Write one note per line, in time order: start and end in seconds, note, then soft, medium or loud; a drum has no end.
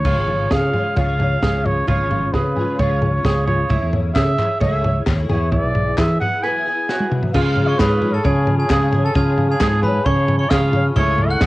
0.00 0.54 C#5 medium
0.05 0.15 C#2 medium
0.05 0.74 C#3 medium
0.05 1.18 C#3 medium
0.05 0.97 G#3 medium
0.05 0.77 C#4 medium
0.05 0.50 F4 medium
0.05 0.75 F4 medium
0.05 0.74 G#4 medium
0.05 kick medium
0.05 floor tom medium
0.05 crash medium
0.17 0.46 G#1 medium
0.28 0.97 F4 soft
0.28 floor tom medium
0.51 0.71 C#3 medium
0.51 0.96 G#4 medium
0.51 4.01 C#5 medium
0.51 0.96 F5 medium
0.51 kick loud
0.51 snare loud
0.51 floor tom medium
0.73 2.56 G#3 medium
0.73 0.97 F4 soft
0.73 0.97 G#4 soft
0.73 floor tom medium
0.77 0.96 C#4 soft
0.96 1.36 C#2 medium
0.96 1.19 C#3 medium
0.96 1.20 G#3 medium
0.96 1.20 C#4 medium
0.96 1.64 F4 medium
0.96 1.20 F4 medium
0.96 1.18 G#4 medium
0.96 1.41 C#5 medium
0.96 1.67 F5 medium
0.96 kick loud
0.96 floor tom medium
1.19 1.86 C#3 medium
1.19 1.41 C#4 soft
1.19 1.42 F4 soft
1.19 1.42 G#4 soft
1.19 floor tom medium
1.42 1.81 C#2 medium
1.42 1.88 G#3 medium
1.42 3.25 C#4 medium
1.42 1.89 C#4 medium
1.42 1.88 F4 medium
1.42 1.87 G#4 medium
1.42 1.90 G#4 medium
1.42 kick medium
1.42 snare medium
1.42 floor tom medium
1.65 1.85 F4 medium
1.65 1.88 C#5 medium
1.65 floor tom medium
1.87 1.98 C#2 medium
1.87 3.01 C#3 medium
1.87 2.56 C#3 medium
1.87 2.79 G#3 medium
1.87 2.58 C#4 medium
1.87 2.33 F4 medium
1.87 2.09 F4 medium
1.87 2.56 F4 medium
1.87 2.55 G#4 medium
1.87 2.34 C#5 medium
1.87 kick medium
1.87 floor tom medium
1.99 2.28 G#1 medium
2.10 2.33 F4 soft
2.10 floor tom medium
2.32 2.53 C#3 medium
2.32 2.78 F4 medium
2.32 2.78 G#4 medium
2.32 2.81 B4 medium
2.32 kick loud
2.32 snare loud
2.32 floor tom medium
2.55 3.68 G#3 soft
2.55 2.79 C#4 soft
2.55 2.79 F4 soft
2.55 2.79 G#4 soft
2.55 floor tom medium
2.79 3.18 C#2 medium
2.79 3.02 C#3 medium
2.79 3.02 G#3 medium
2.79 3.03 C#4 medium
2.79 3.47 F4 medium
2.79 3.02 F4 medium
2.79 3.00 G#4 medium
2.79 3.46 C#5 medium
2.79 3.24 C#5 medium
2.79 kick medium
2.79 floor tom medium
3.01 3.68 C#3 medium
3.01 3.23 C#4 soft
3.01 3.24 F4 soft
3.01 3.25 G#4 soft
3.01 floor tom medium
3.23 3.64 C#2 medium
3.23 3.69 G#3 medium
3.23 3.69 C#4 medium
3.23 3.68 C#4 medium
3.23 3.70 F4 medium
3.23 3.69 G#4 medium
3.23 3.71 G#4 medium
3.23 kick loud
3.23 snare loud
3.23 floor tom medium
3.47 3.68 F4 medium
3.47 3.90 C#5 medium
3.47 floor tom medium
3.69 3.80 C#2 medium
3.69 4.38 C#3 medium
3.69 4.38 A3 medium
3.69 4.39 C#4 medium
3.69 4.15 E4 medium
3.69 4.40 E4 medium
3.69 4.37 G#4 medium
3.69 kick medium
3.69 floor tom medium
3.83 4.11 E2 medium
3.93 floor tom medium
4.14 4.35 C#3 medium
4.14 4.60 G#4 medium
4.14 4.58 E5 loud
4.14 kick medium
4.14 snare medium
4.14 clap medium
4.14 floor tom medium
4.38 4.62 C#4 soft
4.38 4.62 E4 soft
4.38 4.61 G#4 medium
4.38 clap medium
4.38 floor tom medium
4.60 5.00 C#2 medium
4.60 4.84 C#3 medium
4.60 4.85 A3 medium
4.60 4.84 C#4 medium
4.60 4.83 E4 medium
4.60 4.81 G#4 medium
4.60 5.06 C#5 medium
4.60 5.04 E5 medium
4.60 kick loud
4.60 floor tom medium
4.82 5.06 C#4 soft
4.82 5.07 E4 soft
4.82 5.06 G#4 soft
4.82 floor tom medium
5.06 5.26 D#2 medium
5.06 5.29 A3 medium
5.06 5.30 C#4 medium
5.06 5.29 E4 medium
5.06 5.28 G#4 medium
5.06 kick medium
5.06 snare medium
5.06 clap medium
5.06 floor tom medium
5.29 5.59 E2 medium
5.29 6.22 F#3 medium
5.29 6.22 B3 medium
5.29 6.20 E4 medium
5.29 6.19 G#4 medium
5.29 5.51 C#5 medium
5.29 floor tom medium
5.34 6.23 E3 medium
5.52 5.97 E4 medium
5.52 5.99 D5 medium
5.52 kick medium
5.52 floor tom medium
5.63 5.93 B1 medium
5.75 floor tom medium
5.97 6.17 E3 medium
5.97 6.43 G#4 medium
5.97 6.19 E5 medium
5.97 kick loud
5.97 snare loud
5.97 clap medium
5.97 floor tom medium
6.20 6.44 B3 soft
6.20 6.44 E4 soft
6.20 6.43 G#4 medium
6.20 6.44 F#5 medium
6.20 floor tom medium
6.43 6.66 E3 medium
6.43 6.66 F#3 medium
6.43 6.67 B3 medium
6.43 6.66 E4 medium
6.43 6.64 G#4 medium
6.43 6.88 B4 medium
6.43 7.11 G#5 medium
6.65 6.89 E4 soft
6.65 6.88 G#4 soft
6.69 6.88 B3 soft
6.88 7.33 F#3 medium
6.88 7.34 B3 medium
6.88 7.35 E4 medium
6.88 7.34 F#4 medium
6.88 7.34 G#4 medium
6.88 snare medium
7.00 high tom medium
7.12 mid tom medium
7.23 floor tom medium
7.33 7.77 C#3 medium
7.33 7.73 C#3 loud
7.33 7.79 G#3 medium
7.33 7.79 C#4 medium
7.33 7.79 F4 medium
7.33 7.81 G#4 medium
7.33 7.69 F5 medium
7.33 7.66 F6 medium
7.33 kick medium
7.33 floor tom medium
7.33 crash medium
7.56 floor tom medium
7.67 7.80 C#5 medium
7.67 7.80 C#6 medium
7.79 8.18 G#2 loud
7.79 8.02 C#3 medium
7.79 8.02 G#3 medium
7.79 8.02 C#4 medium
7.79 8.01 F4 medium
7.79 8.24 G#4 medium
7.79 7.99 G#4 medium
7.79 8.15 B4 medium
7.79 8.14 B5 medium
7.79 kick loud
7.79 snare loud
7.79 clap medium
7.79 floor tom medium
8.01 8.23 C#4 soft
8.01 8.24 F4 soft
8.01 8.24 G#4 soft
8.01 floor tom medium
8.14 8.25 A4 medium
8.14 8.25 A5 medium
8.23 8.64 C#3 medium
8.23 8.69 G#3 medium
8.23 8.70 C#4 medium
8.23 8.69 F4 medium
8.23 8.57 G#4 medium
8.23 8.70 G#4 medium
8.23 8.70 C#5 medium
8.23 8.59 G#5 medium
8.23 kick loud
8.23 floor tom medium
8.47 floor tom medium
8.57 9.06 G#4 medium
8.57 9.02 G#5 medium
8.69 8.92 C#3 medium
8.69 9.09 C#3 medium
8.69 8.93 G#3 medium
8.69 8.93 C#4 medium
8.69 8.92 F4 medium
8.69 9.15 G#4 medium
8.69 8.90 G#4 medium
8.69 kick loud
8.69 snare loud
8.69 clap medium
8.69 floor tom medium
8.92 9.14 C#4 soft
8.92 9.15 F4 soft
8.92 9.15 G#4 medium
8.92 floor tom medium
9.05 9.16 A4 medium
9.05 9.17 A5 medium
9.14 9.59 C#3 medium
9.14 9.54 C#3 loud
9.14 9.60 G#3 medium
9.14 9.61 C#4 medium
9.14 9.60 F4 medium
9.14 9.61 F4 medium
9.14 9.49 G#4 medium
9.14 9.62 G#4 medium
9.14 9.50 G#5 medium
9.14 kick loud
9.14 floor tom medium
9.38 floor tom medium
9.50 9.81 G#4 medium
9.50 9.82 G#5 medium
9.60 9.99 G#2 medium
9.60 9.83 C#3 medium
9.60 9.83 G#3 medium
9.60 9.84 C#4 medium
9.60 9.84 F4 medium
9.60 10.05 G#4 medium
9.60 9.82 G#4 medium
9.60 kick loud
9.60 snare loud
9.60 clap medium
9.60 floor tom medium
9.82 10.06 F4 soft
9.82 10.06 G#4 medium
9.82 10.07 B4 medium
9.82 10.05 B5 medium
9.82 floor tom medium
9.87 10.05 C#4 soft
10.05 10.45 C#3 medium
10.05 10.51 G#3 medium
10.05 10.50 C#4 medium
10.05 10.51 F4 medium
10.05 10.53 G#4 medium
10.05 10.38 C#5 medium
10.05 10.51 C#5 medium
10.05 10.38 C#6 medium
10.05 kick loud
10.05 floor tom medium
10.28 floor tom medium
10.39 10.51 C#5 medium
10.39 10.50 C#6 medium
10.50 10.74 C#3 medium
10.50 10.90 C#3 medium
10.50 10.74 G#3 medium
10.50 10.74 C#4 medium
10.50 10.72 F4 medium
10.50 10.96 G#4 medium
10.50 10.71 G#4 medium
10.50 10.85 F5 loud
10.50 10.85 F6 medium
10.50 kick loud
10.50 snare loud
10.50 clap medium
10.50 floor tom medium
10.72 10.96 C#4 medium
10.72 10.97 F4 medium
10.72 10.96 G#4 medium
10.72 floor tom medium
10.96 11.35 C#2 loud
10.96 11.39 C#3 medium
10.96 11.40 A3 medium
10.96 11.40 C#4 medium
10.96 11.41 E4 medium
10.96 11.42 E4 medium
10.96 11.42 G#4 medium
10.96 11.31 C#5 loud
10.96 11.28 C#6 medium
10.96 kick loud
10.96 floor tom medium
11.18 floor tom medium
11.30 11.46 F#5 loud
11.30 11.46 F#6 medium
11.40 11.46 E2 medium
11.40 11.46 C#3 medium
11.40 11.46 A3 medium
11.40 11.46 C#4 medium
11.40 11.46 E4 medium
11.40 11.46 G#4 medium
11.40 kick loud
11.40 snare loud
11.40 clap medium
11.40 floor tom medium